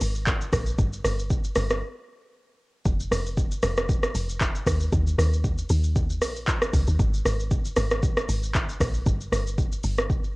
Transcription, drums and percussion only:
0.01 open hi-hat medium
0.01 shaker loud
0.15 shaker medium
0.27 kick loud
0.27 clap medium
0.27 shaker medium
0.41 shaker medium
0.53 kick loud
0.53 cross-stick medium
0.53 open hi-hat medium
0.53 shaker loud
0.66 shaker medium
0.78 kick loud
0.78 shaker medium
0.93 shaker medium
1.05 cross-stick medium
1.05 open hi-hat medium
1.05 shaker medium
1.19 shaker medium
1.30 kick loud
1.30 shaker medium
1.44 shaker medium
1.55 cross-stick loud
1.55 open hi-hat medium
1.55 shaker medium
1.70 cross-stick loud
1.70 shaker medium
2.86 kick loud
2.86 shaker medium
3.00 shaker medium
3.12 cross-stick medium
3.12 open hi-hat medium
3.12 shaker medium
3.26 shaker soft
3.37 kick loud
3.37 shaker medium
3.51 shaker medium
3.63 cross-stick loud
3.63 open hi-hat medium
3.63 shaker medium
3.77 cross-stick loud
3.77 shaker medium
3.89 kick loud
3.89 shaker medium
4.03 cross-stick loud
4.03 shaker medium
4.15 open hi-hat medium
4.15 shaker loud
4.29 shaker medium
4.41 kick loud
4.41 clap medium
4.41 shaker medium
4.55 shaker medium
4.67 kick loud
4.67 cross-stick medium
4.67 open hi-hat medium
4.67 shaker loud
4.80 shaker medium
4.93 kick loud
4.93 shaker medium
5.07 shaker medium
5.19 cross-stick medium
5.19 open hi-hat medium
5.19 shaker medium
5.33 shaker medium
5.44 kick medium
5.44 shaker medium
5.58 shaker medium
5.69 open hi-hat medium
5.69 shaker medium
5.84 shaker medium
5.96 kick loud
5.96 shaker medium
6.10 shaker medium
6.22 cross-stick medium
6.22 open hi-hat medium
6.22 shaker loud
6.36 shaker medium
6.48 kick loud
6.48 clap medium
6.48 shaker medium
6.62 cross-stick loud
6.62 shaker medium
6.74 kick loud
6.74 open hi-hat medium
6.74 shaker loud
6.87 shaker medium
6.99 kick loud
6.99 shaker medium
7.14 shaker medium
7.25 cross-stick medium
7.25 open hi-hat medium
7.25 shaker medium
7.40 shaker medium
7.51 kick loud
7.51 shaker medium
7.65 shaker medium
7.76 cross-stick loud
7.76 open hi-hat medium
7.76 shaker medium
7.91 cross-stick loud
7.91 shaker medium
8.03 kick loud
8.03 shaker medium
8.17 cross-stick loud
8.17 shaker medium
8.29 open hi-hat medium
8.29 shaker loud
8.43 shaker medium
8.54 kick medium
8.54 clap medium
8.54 shaker medium
8.69 shaker medium
8.80 kick loud
8.80 cross-stick loud
8.80 open hi-hat medium
8.80 shaker loud
8.94 shaker medium
9.06 kick loud
9.06 shaker medium
9.21 shaker medium
9.32 cross-stick medium
9.32 open hi-hat medium
9.32 shaker medium
9.47 shaker medium
9.58 kick loud
9.58 shaker medium
9.72 shaker medium
9.83 open hi-hat medium
9.83 shaker medium
9.98 cross-stick loud
9.98 shaker medium
10.10 kick loud
10.10 shaker medium
10.24 shaker medium

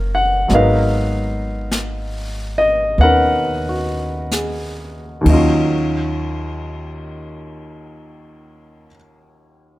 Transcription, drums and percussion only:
0.49 brush sweep soft
0.49 snare soft
1.72 brush sweep soft
1.72 snare soft
1.72 hi-hat pedal soft
2.98 brush sweep soft
4.32 brush sweep soft
4.32 snare soft
4.32 hi-hat pedal soft
5.26 kick soft
5.26 ride soft

